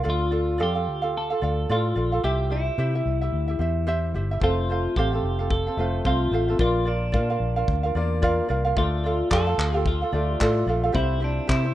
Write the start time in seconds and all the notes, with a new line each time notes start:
0.03 D2 F4 A4 D5 F5
0.10 F4
0.31 F4 A4 D5 F5
0.58 F2 F4 A4 D5 F5
0.63 G4
0.75 F4 A4 F5
0.88 D2
1.02 F4 A4 F5
1.17 A4
1.30 F4 A4 F5
1.41 D2 F4 A4 D5 F5
1.69 A2 F4 A4 D5 F5
1.95 A#1 F4 A4 D5 F5
2.12 F4 A4 F5
2.23 C2 E4 G4 C5 E5
2.50 E4 G4 C5 E5
2.78 C3 E4 G4 C5 E5
2.95 E4 G4 E5
3.06 C2
3.21 E4 G4 E5
3.33 D2
3.48 E4 G4 E5
3.59 E2 E4 G4 C5 E5
3.87 E4 G4 C5 E5
4.14 G1 E4 G4 C5 E5
4.31 E4 G4 E5
4.40 F1 A3 C4 F4 A4 C5 F5, kick
4.70 C4 A4 C5 F5
4.96 A1 C4 G4 A4 C5 F5, kick
5.13 C4 A4 F5
5.23 F1
5.39 C4 A4 F5
5.50 A4, kick
5.67 C4 A4 F5
5.77 F1 A3 C4 F4 A4 C5 F5
6.05 C2 C4 F4 A4 C5 F5, kick
6.31 A1 C4 A4 C5 F5
6.48 C4 A4 F5
6.59 A#1 A#3 F4 A#4 D5 F5, kick
6.85 D4 F4 A#4 D5 F5
7.12 A#2 F4 A#4 D5 F5, kick
7.30 F4 A#4 F5
7.40 A#1
7.56 F4 A#4 F5
7.68 D2, kick
7.83 F4 A#4 F5
7.95 E2 A#3 F4 A#4 D5 F5
8.22 F4 A#4 D5 F5, kick
8.48 C2 F4 A#4 D5 F5
8.65 F4 A#4 F5
8.76 D2 A3 F4 A4 D5 F5, kick
9.04 F4 A4 D5 F5
9.30 F2 F4 A4 D5 F5, kick, clap
9.47 F4 A4 F5
9.58 D2, clap
9.74 F4 G4 A4 F5
9.86 F4, kick
10.02 F4 A4 F5
10.12 D2 A3 F4 A4 D5 F5
10.40 A2 F4 A4 D5 F5, kick, clap
10.66 A#1 F4 A4 D5 F5
10.84 F4 A4 F5
10.92 C2 G3 C4 E4 G4 C5, kick
11.20 C4 D4 E4 G4 C5
11.47 C3 C4 E4 G4 C5, kick, clap
11.64 C4 E4 C5